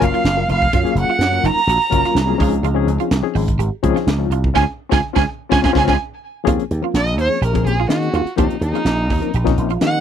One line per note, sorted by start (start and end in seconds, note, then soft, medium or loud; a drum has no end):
0.00 0.11 F#1 medium
0.00 0.26 F#3 medium
0.00 0.27 A#3 medium
0.00 0.27 C#4 medium
0.00 0.27 F4 medium
0.00 0.27 A#4 loud
0.00 0.50 F5 medium
0.00 kick medium
0.00 closed hi-hat medium
0.05 0.51 F5 medium
0.14 0.29 F4 medium
0.14 closed hi-hat soft
0.24 0.43 F#1 medium
0.24 snare loud
0.24 closed hi-hat medium
0.36 0.45 F#3 medium
0.36 0.45 A#3 medium
0.36 0.45 C#4 medium
0.36 0.45 F4 medium
0.36 0.45 A#4 medium
0.48 0.67 F1 medium
0.48 0.54 F4 soft
0.48 0.64 F4 medium
0.48 0.55 A#4 soft
0.48 0.94 F5 medium
0.48 0.95 F5 medium
0.48 closed hi-hat medium
0.60 0.66 F4 soft
0.60 0.67 G#4 soft
0.60 kick medium
0.73 0.83 F#2 loud
0.73 0.88 F4 medium
0.73 kick loud
0.73 closed hi-hat medium
0.84 1.18 F#3 medium
0.84 1.19 A#3 medium
0.84 1.19 C#4 medium
0.84 1.19 F4 medium
0.84 1.19 G#4 medium
0.84 muted slap bass stroke soft
0.84 closed hi-hat soft
0.95 1.05 F#1 medium
0.95 closed hi-hat medium
1.00 1.47 F#5 medium
1.00 1.49 F#5 medium
1.10 1.24 F4 medium
1.19 1.38 F#2 medium
1.19 snare loud
1.19 closed hi-hat medium
1.32 1.58 F#3 medium
1.32 1.58 A#3 medium
1.32 1.58 C#4 medium
1.32 1.59 F4 medium
1.32 1.59 A#4 medium
1.32 closed hi-hat soft
1.43 1.53 F#1 medium
1.43 1.60 D#4 medium
1.43 2.40 A#5 loud
1.43 closed hi-hat medium
1.48 2.42 A#5 medium
1.58 closed hi-hat soft
1.67 1.77 A#1 medium
1.67 1.73 F4 soft
1.67 1.84 F#4 medium
1.67 1.74 G#4 soft
1.67 closed hi-hat medium
1.82 closed hi-hat soft
1.90 2.02 F#1 medium
1.90 2.17 F#3 medium
1.90 2.17 A#3 medium
1.90 2.17 C#4 medium
1.90 2.17 F4 medium
1.90 2.18 A#4 loud
1.90 kick medium
1.90 closed hi-hat medium
2.05 2.20 F4 medium
2.05 snare soft
2.05 closed hi-hat soft
2.15 2.34 C2 medium
2.15 snare loud
2.15 closed hi-hat medium
2.26 2.36 F#3 medium
2.26 2.36 A#3 medium
2.26 2.36 C#4 medium
2.26 2.36 F4 medium
2.26 2.36 G#4 medium
2.38 2.58 C#2 medium
2.38 2.68 F3 medium
2.38 2.68 C4 medium
2.38 2.68 C#4 medium
2.38 2.68 D#4 medium
2.38 2.56 F4 medium
2.38 2.69 G#4 loud
2.38 kick medium
2.38 open hi-hat medium
2.54 closed hi-hat soft
2.63 2.82 C#2 loud
2.63 2.79 F4 medium
2.63 closed hi-hat medium
2.75 3.09 F3 medium
2.75 3.10 C4 medium
2.75 3.10 C#4 loud
2.75 3.10 D#4 loud
2.75 3.10 G#4 loud
2.87 2.97 C#2 medium
2.87 closed hi-hat medium
3.00 3.15 F4 medium
3.00 closed hi-hat soft
3.11 3.21 C2 medium
3.11 snare loud
3.11 closed hi-hat medium
3.22 3.49 F3 medium
3.22 3.49 C4 medium
3.22 3.49 C#4 medium
3.22 3.50 D#4 medium
3.22 3.50 G#4 loud
3.35 3.54 G#1 medium
3.35 3.50 D#4 medium
3.35 open hi-hat medium
3.48 kick medium
3.48 closed hi-hat soft
3.59 3.69 G#1 medium
3.59 3.65 D#4 soft
3.59 3.74 G4 medium
3.59 3.66 A#4 soft
3.59 closed hi-hat medium
3.82 3.93 C#2 medium
3.82 4.09 F3 loud
3.82 4.09 C4 loud
3.82 4.09 C#4 loud
3.82 4.09 D#4 loud
3.82 4.10 G#4 loud
3.82 kick medium
3.82 closed hi-hat medium
3.96 4.11 F4 medium
3.96 snare soft
3.96 closed hi-hat soft
4.07 4.25 C#2 medium
4.07 snare loud
4.07 closed hi-hat medium
4.18 4.27 F3 medium
4.18 4.27 C4 medium
4.18 4.27 C#4 medium
4.18 4.28 D#4 medium
4.18 4.28 F4 medium
4.30 4.49 C2 loud
4.30 4.37 D#4 soft
4.30 4.37 F4 soft
4.30 4.47 F4 medium
4.30 closed hi-hat medium
4.43 4.49 D#4 soft
4.43 4.49 A#4 soft
4.43 kick medium
4.54 4.65 C#2 medium
4.54 4.62 C4 medium
4.54 4.63 C#4 medium
4.54 4.62 F4 medium
4.54 4.63 F4 medium
4.54 4.63 G#4 medium
4.54 4.63 G#5 medium
4.54 4.64 G#5 loud
4.54 kick medium
4.54 snare medium
4.89 5.00 C#2 medium
4.89 4.98 C4 loud
4.89 4.97 C#4 medium
4.89 4.99 C#4 medium
4.89 4.98 F4 medium
4.89 4.99 F4 medium
4.89 4.99 G#4 medium
4.89 4.99 G#5 medium
4.89 kick medium
4.89 snare loud
5.13 5.24 C#2 medium
5.13 5.21 C4 medium
5.13 5.22 C#4 medium
5.13 5.23 C#4 medium
5.13 5.21 F4 medium
5.13 5.23 F4 medium
5.13 5.23 G#4 loud
5.13 5.23 G#5 medium
5.13 kick medium
5.13 snare medium
5.17 5.24 G#5 medium
5.49 5.61 C#2 medium
5.49 5.58 C4 medium
5.49 5.58 C#4 medium
5.49 5.60 C#4 loud
5.49 5.58 F4 medium
5.49 5.60 F4 medium
5.49 5.59 G#4 loud
5.49 5.59 G#5 loud
5.49 kick medium
5.49 snare medium
5.54 5.61 G#5 medium
5.62 5.72 C#2 medium
5.62 5.70 C4 medium
5.62 5.70 C#4 medium
5.62 5.71 C#4 medium
5.62 5.70 F4 medium
5.62 5.71 F4 medium
5.62 5.71 G#4 medium
5.62 5.71 G#5 medium
5.62 5.72 G#5 medium
5.62 kick loud
5.62 snare medium
5.73 5.84 C#2 medium
5.73 5.82 C4 medium
5.73 5.82 C#4 medium
5.73 5.83 C#4 medium
5.73 5.82 F4 loud
5.73 5.83 F4 medium
5.73 5.83 G#4 medium
5.73 5.84 G#5 medium
5.73 kick medium
5.73 snare medium
5.78 5.84 G#5 loud
5.84 5.96 C#2 medium
5.84 5.93 C4 medium
5.84 5.93 C#4 medium
5.84 5.93 F4 medium
5.84 5.95 F4 medium
5.84 5.95 G#4 loud
5.84 5.95 G#5 medium
5.84 kick medium
5.84 snare medium
5.89 5.95 C#4 medium
5.89 5.96 G#5 medium
6.44 6.57 D#2 medium
6.44 6.63 F3 loud
6.44 6.63 A#3 medium
6.44 6.63 C4 medium
6.44 6.63 C#4 loud
6.44 6.62 F4 medium
6.44 6.63 G#4 loud
6.44 kick medium
6.44 closed hi-hat medium
6.59 closed hi-hat soft
6.71 6.80 D#2 medium
6.71 closed hi-hat medium
6.81 6.90 F3 medium
6.81 6.90 A#3 medium
6.81 6.91 C4 medium
6.81 6.91 C#4 medium
6.81 6.99 F4 medium
6.81 6.91 A#4 medium
6.93 7.18 A#1 medium
6.93 7.00 C#4 soft
6.93 7.00 G4 soft
6.93 7.18 D#5 medium
6.93 snare loud
6.93 closed hi-hat medium
7.07 closed hi-hat soft
7.18 7.28 D#2 medium
7.18 7.33 D#4 medium
7.18 7.43 C#5 medium
7.18 closed hi-hat medium
7.28 7.38 F3 medium
7.28 7.38 A#3 medium
7.28 7.38 C4 medium
7.28 7.38 C#4 medium
7.28 7.39 G#4 medium
7.41 7.60 A#1 medium
7.41 7.57 G4 medium
7.41 7.66 A#4 medium
7.41 closed hi-hat medium
7.53 7.80 F3 medium
7.53 7.80 A#3 medium
7.53 7.80 C4 medium
7.53 7.80 C#4 medium
7.53 7.81 G#4 medium
7.53 kick medium
7.53 closed hi-hat soft
7.66 7.85 A#1 medium
7.66 7.89 G#4 medium
7.66 closed hi-hat medium
7.80 7.94 F4 medium
7.89 8.08 D#3 medium
7.89 8.25 D#3 medium
7.89 8.25 A#3 medium
7.89 8.25 C4 medium
7.89 8.25 C#4 medium
7.89 8.37 F#4 medium
7.89 8.25 G#4 medium
7.89 snare loud
7.89 closed hi-hat medium
8.03 closed hi-hat soft
8.13 8.23 D#2 loud
8.13 8.30 F4 medium
8.13 closed hi-hat medium
8.25 muted slap bass stroke soft
8.25 closed hi-hat soft
8.36 8.48 D#2 medium
8.36 8.55 F3 medium
8.36 8.55 A#3 medium
8.36 8.56 C4 medium
8.36 8.55 C#4 medium
8.36 8.62 D#4 medium
8.36 8.54 F4 medium
8.36 8.56 G4 loud
8.36 kick loud
8.36 closed hi-hat medium
8.50 closed hi-hat soft
8.61 8.71 D#2 medium
8.61 9.55 D#4 medium
8.61 8.68 A#4 soft
8.61 closed hi-hat medium
8.72 8.82 F3 medium
8.72 8.82 A#3 medium
8.72 8.82 C4 medium
8.72 8.82 C#4 medium
8.72 8.90 F4 medium
8.72 8.82 G#4 medium
8.72 closed hi-hat soft
8.85 9.10 A#1 medium
8.85 snare loud
8.85 closed hi-hat medium
9.10 9.20 D#2 medium
9.10 9.26 D#4 medium
9.10 kick medium
9.10 open hi-hat medium
9.20 9.30 F3 medium
9.20 9.30 A#3 medium
9.20 9.30 C4 medium
9.20 9.30 C#4 medium
9.20 9.30 A#4 medium
9.20 closed hi-hat soft
9.32 9.53 A#1 medium
9.32 9.39 C#4 soft
9.32 9.50 G4 medium
9.32 closed hi-hat medium
9.44 9.71 F3 loud
9.44 9.71 A#3 medium
9.44 9.72 C4 medium
9.44 9.72 C#4 medium
9.44 9.72 D#4 loud
9.44 kick medium
9.44 snare soft
9.44 closed hi-hat soft
9.57 9.76 A#1 medium
9.57 closed hi-hat medium
9.70 9.86 F4 medium
9.70 closed hi-hat soft
9.80 10.00 D#3 loud
9.80 10.00 F3 medium
9.80 10.00 A#3 medium
9.80 10.00 C4 medium
9.80 10.00 C#4 medium
9.80 10.00 G4 medium
9.80 10.00 F#5 loud
9.80 snare loud
9.80 closed hi-hat medium